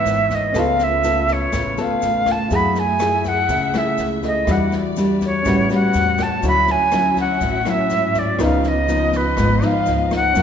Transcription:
Already playing: G#2 E3 B3 E4 B4 C#5 E5 E6
0.05 G#1, snare, shaker
0.30 kick, snare, shaker
0.34 D#5
0.52 C#2 C#3 A3 B3 C#4 F4 A4 B4, kick, cross-stick, snare, shaker
0.56 F4 A4 B4 F5
0.79 snare, shaker
0.83 E5
1.04 B3 F4 A4, snare, shaker
1.28 kick, snare, shaker
1.32 C#5
1.52 A1 C#3, kick, cross-stick, snare, shaker
1.77 B3 F4 A4, snare, shaker
1.81 F5
2.02 A1, snare, shaker
2.26 kick, cross-stick, snare, shaker
2.31 A5
2.48 F#2 F#3 A3 E4 G#4 E5, kick, snare, shaker
2.54 F#5 B5
2.75 G#5, snare, shaker
2.99 A3 E4 G#4, cross-stick, snare, shaker
3.24 F#5, kick, snare, shaker
3.49 C#2 C#3, kick, snare, shaker
3.74 A3 E4 G#4 E5, cross-stick, snare, shaker
3.98 C#2, snare, shaker
4.22 E4 G#4 A4 D#5, kick, snare, shaker
4.45 E2 E3 G3 D4 E4 F#4 D5, kick, cross-stick, snare, shaker
4.50 D5 F#5
4.72 snare, shaker
4.96 G3 D4 F#4, snare, shaker
5.21 kick, snare, shaker
5.25 C#5
5.43 A1 A2 G3 B3 C#4 C#5, kick, cross-stick, snare, shaker
5.47 F#4 B4 F#5
5.70 G3 C#4 F#4, snare, shaker
5.74 F#5
5.94 E2, snare, shaker
6.18 kick, cross-stick, snare, shaker
6.22 A5
6.43 D2 D3 F#3 C#4 E4 F#4 C#5 E5, kick, snare, shaker
6.47 E5 B5
6.67 G#5, snare, shaker
6.92 F#3 C#4 E4, cross-stick, snare, shaker
7.16 F#5, kick, snare, shaker
7.41 A1 A2, kick, snare, shaker
7.66 F#3 C#4 E4 E5, cross-stick, snare, shaker
7.90 G#2, snare, shaker
8.14 D5, kick, snare, shaker
8.37 C#2 C#3 F3 B3 C#4 D#4 F4 B4 D#5, kick, cross-stick, snare, shaker
8.43 D#5 F5
8.64 D#5, snare, shaker
8.88 F3 B3 D#4, snare, shaker
9.12 B4, kick, snare, shaker
9.37 G#1 G#2, kick, cross-stick, snare, shaker
9.62 F3 B3 D#4 F5, snare, shaker
9.86 C#2, snare, shaker
10.11 kick, cross-stick, snare, shaker
10.15 F#5
10.33 F#2 F#3 A#3 C#4 F4 F5, kick, snare, shaker
10.37 A#4 F5

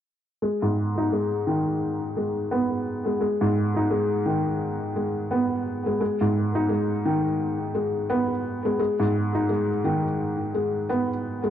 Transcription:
0.42 G#3
0.62 G#2
0.98 D#4
1.12 G#3
1.47 D#3
2.17 G#3
2.51 B3
3.06 G#3
3.21 G#3
3.41 G#2
3.76 D#4
3.91 G#3
4.26 D#3
4.96 G#3
5.31 B3
5.86 G#3
6.01 G#3
6.21 G#2
6.55 D#4
6.69 G#3
7.05 D#3
7.75 G#3
8.10 B3
8.65 G#3
8.79 G#3
9.00 G#2
9.35 D#4
9.49 G#3
9.84 D#3
10.54 G#3
10.89 B3
11.44 G#3

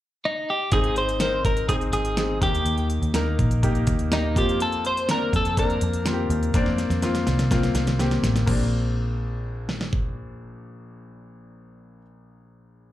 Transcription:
0.25 D#4
0.50 G4
0.72 G#1 G#2 C4 D#4 G#4, kick, closed hi-hat
0.84 closed hi-hat
0.96 C5, closed hi-hat
1.09 closed hi-hat
1.20 C4 D#4 A#4 C5, snare, closed hi-hat
1.45 G#1 A#4, kick, closed hi-hat
1.57 closed hi-hat
1.68 C4 D#4 G#4, kick, closed hi-hat
1.81 closed hi-hat
1.93 G#1 G#4, closed hi-hat
2.05 closed hi-hat
2.17 C4 D#4 G#4, snare, closed hi-hat
2.41 D#2 D#3 A#3 D#4 G4, kick, closed hi-hat
2.55 closed hi-hat
2.65 D#2, closed hi-hat
2.78 closed hi-hat
2.90 closed hi-hat
3.02 D#2, closed hi-hat
3.14 A#3 D#4 A#4, snare, closed hi-hat
3.39 A#1, kick, closed hi-hat
3.51 closed hi-hat
3.63 A#3 D#4 G4, kick, closed hi-hat
3.75 closed hi-hat
3.87 D#2, kick, closed hi-hat
3.99 closed hi-hat
4.12 A#3 D#4 G4, snare, closed hi-hat
4.36 F2 A#3 C4 F4 G4, kick, closed hi-hat
4.49 closed hi-hat
4.60 A4, closed hi-hat
4.72 closed hi-hat
4.85 C5, closed hi-hat
4.97 closed hi-hat
5.09 A#3 C4 D4 A#4, snare, closed hi-hat
5.33 F2 A4, kick, closed hi-hat
5.45 closed hi-hat
5.57 A#3 C4 D4 A#4, kick, closed hi-hat
5.70 closed hi-hat
5.81 F2, closed hi-hat
5.93 closed hi-hat
6.06 A#3 C4 F4, snare, closed hi-hat
6.13 G4
6.30 D#2, closed hi-hat
6.43 closed hi-hat
6.54 F2 A#3 C4 D4, kick, snare, closed hi-hat
6.66 snare
6.78 snare, closed hi-hat
6.90 F2, snare, closed hi-hat
7.02 A#3 C4 F4, snare, closed hi-hat
7.15 snare, closed hi-hat
7.27 C2, snare, closed hi-hat
7.39 snare, closed hi-hat
7.51 A#3 C4 F4, kick, snare, closed hi-hat
7.63 snare, closed hi-hat
7.74 C2, snare, closed hi-hat
7.87 snare, closed hi-hat
7.99 A#3 C4 G4, snare, closed hi-hat
8.11 snare, closed hi-hat
8.23 A1, snare, closed hi-hat
8.36 snare, closed hi-hat
8.46 A#1 A#3 C4 D4, kick, crash
9.69 snare
9.81 snare
9.93 kick

